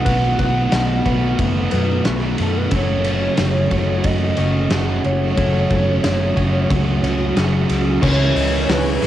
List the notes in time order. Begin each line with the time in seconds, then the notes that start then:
Already playing: F#4 B4 D#5
0.05 B1 B2 D#3 F#3 A3 B3 F#4 B4 F#5, kick, ride
0.38 B1 B4, kick, ride
0.71 B1 D#5, snare, ride
1.05 B1 B2 D#3 A3 B3 F#4 B4, kick, ride
1.39 F#1, kick, ride
1.70 F#2 B2 F#3 B3 B4, ride
2.04 B1 B2 D#3 F#3 A3 B3 F#4, snare, ride
2.38 F#2 A4, ride
2.57 B4
2.71 F#1 F#2 C#3 F#3 A3 C#4 F#4 A4 C#5, kick, ride
3.04 A4, ride
3.37 F#1 E5, snare, ride
3.71 F#1 F#2 C#3 F#3 A3 C#4 F#4 C#5, kick, ride
4.04 F#2 D#5, kick, ride
4.37 F#1 F#2 C#3 F#3 C#5, ride
4.70 F#1 F#2 C#3 F#3 A3 C#4 F#4 G#4, snare, ride
5.04 F#1 C#5, ride
5.36 F#1 F#2 C#3 F#3 A3 C#4 F#4 A4, kick, ride
5.70 F#1 A4, kick, ride
6.04 F#1 E5, snare, ride
6.36 F#1 F#2 C#3 F#3 A3 C#4 F#4 C#5, kick, ride
6.71 C#2, kick, ride
7.03 C#2 F#2 C#3 F#3 C#5, ride
7.36 F#1 F#2 C#3 F#3 A3 C#4 F#4 G#4, snare, ride
7.69 C#2, ride
8.02 C#2 C#3 E3 G#3 C#4 E4 B4 C#5 G#5 C#6, kick, crash
8.36 C#2 D#5, open hi-hat
8.69 C#2 B4 C#5, snare, open hi-hat
9.01 B1 E3 G#3 C#4 E4 G#4, snare, open hi-hat